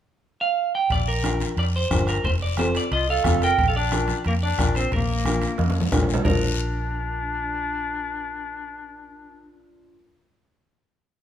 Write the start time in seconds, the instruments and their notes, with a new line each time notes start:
0.41 clean electric guitar F5
0.75 clean electric guitar G5
0.90 fingered electric bass A#1, clean electric guitar D5, bombo low, high timbale, long guiro
1.08 clean electric guitar A#4
1.24 upright piano D4 F4 A#4, bombo rim, high conga, high timbale, short guiro
1.40 high conga, high timbale, short guiro
1.57 fingered electric bass F2, clean electric guitar D5, high timbale, long guiro
1.76 clean electric guitar C5
1.90 fingered electric bass G1, upright piano D4 F4 A#4, bombo low, bombo rim, high conga, high timbale, short guiro
2.07 clean electric guitar A#4, bombo rim, high timbale, short guiro
2.24 fingered electric bass F1, clean electric guitar C5, bombo low, high timbale, long guiro
2.42 clean electric guitar D5
2.57 upright piano C4 F4 A4, clean electric guitar C5, bombo rim, high conga, high timbale, short guiro
2.75 clean electric guitar D5, high timbale, short guiro
2.91 fingered electric bass C2, clarinet F4, clean electric guitar D#5, high timbale, long guiro
3.09 clarinet A4, clean electric guitar F5
3.24 fingered electric bass F1, upright piano C4 F4 A4, bombo low, bombo rim, high conga, high timbale, short guiro
3.42 clarinet A#4, clean electric guitar G5, high timbale, short guiro
3.58 fingered electric bass A#1, bombo low, high timbale, long guiro
3.68 clarinet A4, clean electric guitar F5
3.76 clarinet D4, clean electric guitar D5
3.92 upright piano D4 F4 A#4, bombo rim, high conga, high timbale, short guiro
4.08 high conga, high timbale, short guiro
4.25 fingered electric bass F2, clarinet A#3, clean electric guitar A#4, high timbale, long guiro
4.43 clarinet D4, clean electric guitar D5
4.58 fingered electric bass A#1, upright piano D4 F4 A#4, bombo low, bombo rim, high conga, high timbale, short guiro
4.75 clarinet C4, clean electric guitar C5, high timbale, short guiro
4.92 fingered electric bass A#1, clarinet A#3, clean electric guitar A#4, bombo low, high timbale, long guiro
5.25 upright piano D4 F4 A#4, bombo rim, high conga, high timbale, short guiro
5.42 high conga, high timbale, short guiro
5.58 fingered electric bass F2, high conga, high timbale, long guiro
5.69 high conga, high timbale
5.80 high conga, low timbale
5.92 fingered electric bass A#1, upright piano D4 F4 A#4, bombo low, bombo rim, low conga, short guiro
6.03 low timbale
6.09 short guiro
6.14 low conga, low timbale
6.24 fingered electric bass A#1, upright piano D4 F4 A#4, clarinet D4, clean electric guitar A#4, bombo low, low conga, low timbale, long guiro